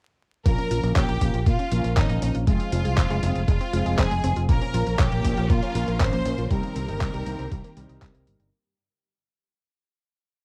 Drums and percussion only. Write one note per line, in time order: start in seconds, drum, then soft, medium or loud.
0.46 kick loud
0.46 closed hi-hat medium
0.58 closed hi-hat soft
0.71 closed hi-hat medium
0.83 closed hi-hat soft
0.96 kick loud
0.96 clap loud
0.96 closed hi-hat medium
1.09 closed hi-hat soft
1.21 kick medium
1.21 closed hi-hat loud
1.34 closed hi-hat soft
1.46 kick loud
1.46 closed hi-hat medium
1.59 closed hi-hat soft
1.72 closed hi-hat medium
1.84 closed hi-hat soft
1.97 kick loud
1.97 clap loud
1.97 closed hi-hat medium
2.09 closed hi-hat soft
2.22 closed hi-hat medium
2.35 closed hi-hat soft
2.47 kick loud
2.47 closed hi-hat medium
2.60 closed hi-hat soft
2.72 closed hi-hat loud
2.85 closed hi-hat soft
2.98 kick loud
2.98 clap loud
2.98 closed hi-hat medium
3.10 closed hi-hat soft
3.23 closed hi-hat loud
3.36 closed hi-hat soft
3.48 kick loud
3.48 closed hi-hat medium
3.61 closed hi-hat soft
3.73 closed hi-hat medium
3.86 closed hi-hat soft
3.99 kick loud
3.99 clap loud
3.99 closed hi-hat medium
4.11 closed hi-hat soft
4.24 closed hi-hat medium
4.36 closed hi-hat soft
4.49 kick loud
4.49 closed hi-hat medium
4.62 closed hi-hat soft
4.74 closed hi-hat medium
4.87 closed hi-hat soft
4.99 kick loud
4.99 clap loud
4.99 closed hi-hat medium
5.12 closed hi-hat soft
5.25 kick medium
5.25 closed hi-hat loud
5.37 closed hi-hat soft
5.50 kick loud
5.50 closed hi-hat medium
5.62 closed hi-hat soft
5.75 closed hi-hat medium
5.88 closed hi-hat soft
6.00 kick loud
6.00 clap loud
6.00 closed hi-hat medium
6.13 closed hi-hat soft
6.25 closed hi-hat medium
6.38 closed hi-hat soft
6.51 kick loud
6.51 closed hi-hat medium
6.63 closed hi-hat soft
6.76 closed hi-hat medium
6.89 closed hi-hat soft
7.01 kick loud
7.01 clap loud
7.01 closed hi-hat medium
7.14 closed hi-hat soft
7.26 closed hi-hat medium
7.39 closed hi-hat soft
7.51 kick loud
7.51 closed hi-hat medium
7.64 closed hi-hat soft
7.77 closed hi-hat medium
7.89 closed hi-hat soft
8.02 kick loud
8.02 clap loud
8.02 closed hi-hat medium
8.15 closed hi-hat soft
8.27 closed hi-hat medium
8.40 closed hi-hat soft